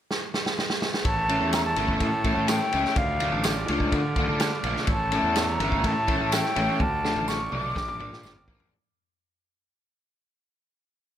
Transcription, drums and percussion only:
0.11 snare medium
0.34 snare medium
0.46 snare medium
0.59 snare medium
0.70 snare medium
0.82 snare medium
0.94 snare medium
1.05 kick loud
1.05 ride medium
1.29 ride medium
1.53 snare loud
1.53 ride medium
1.53 tambourine medium
1.76 ride medium
1.88 kick medium
2.00 kick medium
2.00 ride medium
2.24 kick medium
2.24 ride medium
2.48 snare loud
2.48 ride loud
2.48 tambourine loud
2.72 ride medium
2.85 snare soft
2.96 kick loud
2.96 ride medium
3.20 ride medium
3.44 snare loud
3.44 ride medium
3.44 tambourine medium
3.68 ride medium
3.80 kick medium
3.92 kick medium
3.92 ride medium
4.16 kick medium
4.16 ride medium
4.40 snare loud
4.40 ride medium
4.40 tambourine medium
4.64 ride medium
4.76 snare soft
4.87 kick medium
4.87 ride medium
5.12 ride medium
5.36 snare medium
5.36 ride medium
5.36 tambourine medium
5.60 ride medium
5.72 kick medium
5.84 kick medium
5.84 ride medium
6.08 kick medium
6.08 ride medium
6.32 snare loud
6.32 ride loud
6.32 tambourine loud
6.45 snare soft
6.56 ride medium
6.80 kick loud
6.80 high tom medium
7.05 snare medium
7.28 snare medium
7.28 tambourine medium
7.52 mid tom medium
7.76 kick loud
7.76 snare medium
7.88 mid tom medium
8.00 mid tom medium
8.13 snare medium
8.23 snare medium
8.23 tambourine medium
8.36 floor tom medium
8.48 kick medium
8.60 floor tom medium

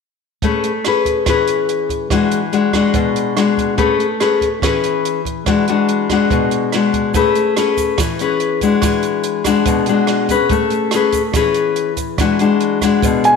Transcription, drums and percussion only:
0.42 kick soft
0.42 closed hi-hat soft
0.64 closed hi-hat soft
0.84 cross-stick medium
0.84 closed hi-hat soft
1.05 kick soft
1.05 closed hi-hat soft
1.26 kick soft
1.26 cross-stick soft
1.26 closed hi-hat medium
1.47 closed hi-hat soft
1.69 closed hi-hat soft
1.89 kick soft
1.89 closed hi-hat soft
2.10 kick soft
2.10 cross-stick soft
2.10 closed hi-hat soft
2.31 closed hi-hat soft
2.53 closed hi-hat soft
2.73 kick soft
2.73 cross-stick soft
2.73 closed hi-hat soft
2.94 kick soft
2.94 closed hi-hat soft
3.16 closed hi-hat soft
3.37 cross-stick medium
3.37 closed hi-hat soft
3.57 kick soft
3.57 closed hi-hat soft
3.78 kick soft
3.78 closed hi-hat soft
4.00 closed hi-hat soft
4.20 cross-stick medium
4.20 closed hi-hat soft
4.41 kick soft
4.41 closed hi-hat soft
4.62 kick soft
4.62 cross-stick medium
4.62 closed hi-hat medium
4.84 closed hi-hat soft
5.05 closed hi-hat soft
5.25 kick soft
5.25 closed hi-hat soft
5.46 kick soft
5.46 cross-stick soft
5.46 closed hi-hat soft
5.68 closed hi-hat soft
5.88 closed hi-hat soft
6.09 kick soft
6.09 cross-stick soft
6.09 closed hi-hat soft
6.31 kick medium
6.31 closed hi-hat soft
6.51 closed hi-hat soft
6.72 cross-stick medium
6.72 closed hi-hat soft
6.93 kick soft
6.93 closed hi-hat soft
7.14 kick soft
7.14 closed hi-hat soft
7.14 shaker medium
7.35 closed hi-hat soft
7.35 shaker soft
7.56 cross-stick medium
7.56 closed hi-hat soft
7.56 shaker soft
7.77 kick soft
7.77 closed hi-hat soft
7.77 shaker medium
7.98 kick medium
7.98 cross-stick medium
7.98 closed hi-hat soft
7.98 shaker medium
8.19 closed hi-hat soft
8.19 shaker soft
8.40 closed hi-hat soft
8.61 kick soft
8.61 closed hi-hat soft
8.61 shaker medium
8.82 kick medium
8.82 cross-stick soft
8.82 closed hi-hat medium
8.82 shaker medium
9.03 closed hi-hat soft
9.03 shaker soft
9.23 closed hi-hat soft
9.44 kick soft
9.44 cross-stick medium
9.44 closed hi-hat soft
9.44 shaker medium
9.65 kick medium
9.65 closed hi-hat medium
9.65 shaker medium
9.86 closed hi-hat soft
9.86 shaker soft
10.07 cross-stick medium
10.07 closed hi-hat soft
10.29 kick soft
10.29 closed hi-hat soft
10.29 shaker medium
10.49 kick soft
10.49 closed hi-hat soft
10.49 shaker medium
10.70 closed hi-hat soft
10.70 shaker soft
10.91 cross-stick medium
10.91 closed hi-hat soft
10.91 shaker soft
11.12 kick soft
11.12 closed hi-hat soft
11.12 shaker medium
11.33 kick medium
11.33 cross-stick medium
11.33 closed hi-hat soft
11.33 shaker medium
11.54 closed hi-hat soft
11.54 shaker soft
11.76 closed hi-hat soft
11.97 kick soft
11.97 closed hi-hat soft
11.97 shaker soft
12.18 kick medium
12.18 cross-stick soft
12.18 closed hi-hat soft
12.18 shaker medium
12.39 closed hi-hat soft
12.39 shaker soft
12.60 closed hi-hat soft
12.81 kick soft
12.81 cross-stick medium
12.81 closed hi-hat soft
12.81 shaker medium
13.03 kick medium
13.03 closed hi-hat medium
13.03 shaker medium
13.24 closed hi-hat soft
13.24 shaker soft

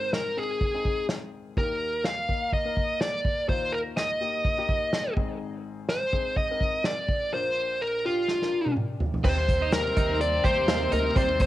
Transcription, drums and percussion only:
0.13 snare medium
0.61 kick medium
0.85 kick medium
1.09 snare medium
1.57 kick medium
2.04 snare medium
2.29 kick medium
2.53 kick medium
2.77 kick medium
3.01 snare medium
3.25 kick medium
3.49 kick medium
3.97 snare medium
4.45 kick medium
4.69 kick medium
4.93 snare medium
5.17 kick medium
5.89 snare medium
6.13 kick medium
6.36 kick medium
6.61 kick medium
6.84 snare medium
7.09 kick medium
8.28 snare soft
8.42 snare soft
8.66 high tom medium
8.77 mid tom medium
9.00 floor tom medium
9.14 floor tom medium
9.25 kick medium
9.25 crash medium
9.49 kick medium
9.49 closed hi-hat medium
9.72 snare loud
9.72 closed hi-hat medium
9.96 kick medium
9.96 closed hi-hat medium
10.21 closed hi-hat medium
10.44 kick medium
10.44 closed hi-hat medium
10.68 snare loud
10.68 closed hi-hat medium
10.92 closed hi-hat medium
11.16 kick loud
11.16 closed hi-hat medium
11.40 kick medium
11.40 closed hi-hat medium

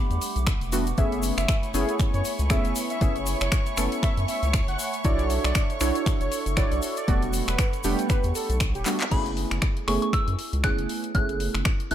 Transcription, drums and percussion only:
0.11 closed hi-hat soft
0.11 shaker soft
0.21 open hi-hat loud
0.21 shaker medium
0.36 closed hi-hat soft
0.36 shaker soft
0.47 finger snap loud
0.47 kick loud
0.47 closed hi-hat medium
0.47 shaker medium
0.61 closed hi-hat soft
0.61 shaker soft
0.72 open hi-hat loud
0.72 shaker loud
0.87 closed hi-hat soft
0.87 shaker soft
0.98 kick loud
0.98 closed hi-hat medium
0.98 shaker medium
1.12 closed hi-hat soft
1.12 shaker soft
1.23 open hi-hat loud
1.23 shaker medium
1.38 finger snap medium
1.38 closed hi-hat soft
1.38 shaker soft
1.48 finger snap loud
1.48 kick loud
1.48 closed hi-hat medium
1.48 shaker soft
1.63 closed hi-hat soft
1.63 shaker soft
1.74 open hi-hat loud
1.74 shaker loud
1.89 closed hi-hat medium
1.89 shaker soft
1.99 finger snap medium
1.99 kick loud
1.99 closed hi-hat medium
1.99 shaker soft
2.14 closed hi-hat soft
2.14 shaker soft
2.25 open hi-hat loud
2.25 shaker medium
2.39 closed hi-hat medium
2.39 shaker soft
2.50 finger snap loud
2.50 kick loud
2.50 closed hi-hat medium
2.50 shaker medium
2.65 closed hi-hat soft
2.65 shaker soft
2.76 open hi-hat loud
2.76 shaker loud
2.90 closed hi-hat medium
2.90 shaker soft
3.01 kick loud
3.01 closed hi-hat medium
3.01 shaker medium
3.16 closed hi-hat soft
3.16 shaker soft
3.26 open hi-hat loud
3.26 shaker medium
3.41 finger snap medium
3.41 closed hi-hat medium
3.41 shaker soft
3.52 finger snap loud
3.52 kick loud
3.52 closed hi-hat medium
3.52 shaker medium
3.66 closed hi-hat soft
3.66 shaker soft
3.77 finger snap medium
3.77 open hi-hat loud
3.77 shaker medium
3.92 closed hi-hat medium
3.92 shaker soft
4.03 finger snap medium
4.03 kick loud
4.03 closed hi-hat medium
4.03 shaker soft
4.17 closed hi-hat soft
4.17 shaker soft
4.28 open hi-hat loud
4.28 shaker medium
4.43 closed hi-hat medium
4.43 shaker soft
4.53 finger snap loud
4.53 kick loud
4.53 closed hi-hat medium
4.53 shaker soft
4.68 closed hi-hat soft
4.68 shaker soft
4.79 open hi-hat loud
4.79 shaker medium
4.93 closed hi-hat medium
4.93 shaker soft
5.04 kick loud
5.04 closed hi-hat medium
5.04 shaker soft
5.19 closed hi-hat soft
5.19 shaker soft
5.30 open hi-hat loud
5.30 shaker medium
5.44 finger snap medium
5.44 closed hi-hat medium
5.44 shaker soft
5.55 finger snap loud
5.55 kick loud
5.55 closed hi-hat medium
5.55 shaker medium
5.70 closed hi-hat soft
5.70 shaker soft
5.80 finger snap medium
5.80 open hi-hat loud
5.80 shaker medium
5.95 closed hi-hat medium
5.95 shaker soft
6.06 finger snap medium
6.06 kick loud
6.06 closed hi-hat medium
6.06 shaker soft
6.21 closed hi-hat soft
6.21 shaker soft
6.32 open hi-hat loud
6.32 shaker medium
6.46 closed hi-hat medium
6.46 shaker soft
6.57 finger snap loud
6.57 kick loud
6.57 closed hi-hat medium
6.57 shaker medium
6.72 closed hi-hat soft
6.72 shaker soft
6.82 open hi-hat loud
6.82 shaker medium
6.97 closed hi-hat medium
6.97 shaker soft
7.08 kick loud
7.08 closed hi-hat medium
7.08 shaker soft
7.22 closed hi-hat soft
7.22 shaker soft
7.33 open hi-hat loud
7.33 shaker medium
7.48 finger snap medium
7.48 closed hi-hat medium
7.48 shaker soft
7.59 finger snap loud
7.59 kick loud
7.59 closed hi-hat medium
7.59 shaker soft
7.73 closed hi-hat soft
7.73 shaker soft
7.84 open hi-hat loud
7.84 shaker medium
7.99 closed hi-hat medium
7.99 shaker soft
8.09 finger snap medium
8.09 kick loud
8.09 closed hi-hat medium
8.09 shaker medium
8.23 closed hi-hat soft
8.23 shaker soft
8.35 open hi-hat loud
8.35 shaker medium
8.50 closed hi-hat medium
8.50 shaker soft
8.60 finger snap loud
8.60 kick loud
8.60 closed hi-hat medium
8.60 shaker soft
8.75 closed hi-hat soft
8.75 shaker soft
8.86 clap medium
8.86 open hi-hat loud
8.86 shaker loud
9.00 clap loud
9.00 closed hi-hat medium
9.00 shaker soft
9.11 kick loud
9.11 closed hi-hat medium
9.11 crash loud
9.26 closed hi-hat soft
9.37 open hi-hat loud
9.51 finger snap medium
9.51 closed hi-hat medium
9.62 finger snap loud
9.62 kick loud
9.62 closed hi-hat medium
9.77 closed hi-hat soft
9.88 finger snap medium
9.88 open hi-hat loud
10.02 closed hi-hat medium
10.13 finger snap medium
10.13 kick loud
10.13 closed hi-hat medium
10.28 closed hi-hat soft
10.39 open hi-hat loud
10.53 closed hi-hat medium
10.64 finger snap loud
10.64 kick loud
10.64 closed hi-hat medium
10.79 closed hi-hat soft
10.89 open hi-hat loud
11.04 closed hi-hat medium
11.15 kick loud
11.15 closed hi-hat medium
11.29 closed hi-hat soft
11.40 open hi-hat loud
11.55 finger snap medium
11.55 closed hi-hat medium
11.65 finger snap loud
11.65 kick loud
11.65 closed hi-hat medium
11.80 closed hi-hat soft
11.91 open hi-hat loud

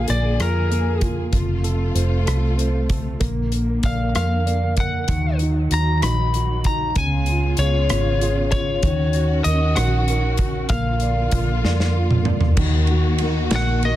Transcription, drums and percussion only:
0.08 cross-stick soft
0.08 closed hi-hat medium
0.40 cross-stick medium
0.40 closed hi-hat medium
0.72 closed hi-hat soft
1.01 kick medium
1.01 closed hi-hat medium
1.33 kick medium
1.33 closed hi-hat medium
1.64 closed hi-hat soft
1.96 closed hi-hat medium
2.27 cross-stick medium
2.27 closed hi-hat medium
2.59 closed hi-hat soft
2.90 kick medium
2.90 closed hi-hat medium
3.21 kick loud
3.21 closed hi-hat medium
3.52 closed hi-hat soft
3.83 kick medium
3.83 closed hi-hat medium
4.15 cross-stick medium
4.15 closed hi-hat medium
4.47 closed hi-hat soft
4.77 kick medium
4.77 closed hi-hat medium
5.08 kick medium
5.08 closed hi-hat medium
5.39 closed hi-hat soft
5.71 closed hi-hat medium
6.02 cross-stick medium
6.02 closed hi-hat medium
6.34 closed hi-hat soft
6.64 kick medium
6.64 closed hi-hat medium
6.96 kick medium
6.96 closed hi-hat medium
7.26 closed hi-hat soft
7.57 closed hi-hat medium
7.89 cross-stick medium
7.89 closed hi-hat medium
8.21 closed hi-hat soft
8.52 kick medium
8.52 closed hi-hat medium
8.83 kick medium
8.83 closed hi-hat medium
9.13 closed hi-hat soft
9.45 closed hi-hat medium
9.76 cross-stick loud
9.76 closed hi-hat medium
10.08 closed hi-hat soft
10.37 kick medium
10.37 closed hi-hat medium
10.69 kick loud
10.69 closed hi-hat medium
11.00 closed hi-hat soft
11.31 kick medium
11.31 closed hi-hat medium
11.65 snare soft
11.80 snare soft
12.11 mid tom medium
12.25 mid tom medium
12.41 floor tom medium
12.57 kick loud
12.57 crash medium
12.87 ride soft
13.18 ride medium
13.51 snare loud
13.51 ride medium
13.83 ride soft

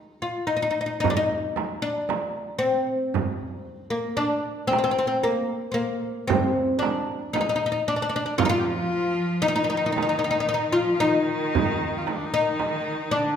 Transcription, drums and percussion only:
1.04 frame drum medium
1.04 darbuka dum medium
1.56 darbuka tek medium
1.56 frame drum medium
2.09 darbuka tek medium
2.09 frame drum medium
2.37 darbuka ka soft
2.62 darbuka ka soft
3.14 frame drum medium
3.14 darbuka dum medium
4.71 darbuka tek medium
4.71 frame drum medium
6.29 frame drum loud
6.29 darbuka dum medium
6.82 darbuka tek medium
6.82 frame drum medium
7.35 darbuka tek medium
7.35 frame drum medium
7.63 darbuka ka soft
7.88 darbuka ka soft
8.39 frame drum loud
8.39 darbuka dum medium
9.96 darbuka tek medium
9.96 frame drum medium
11.55 frame drum medium
11.55 darbuka dum medium
12.07 darbuka tek medium
12.07 frame drum medium
12.60 darbuka tek medium
12.60 frame drum medium
12.85 darbuka ka soft
13.12 darbuka ka soft

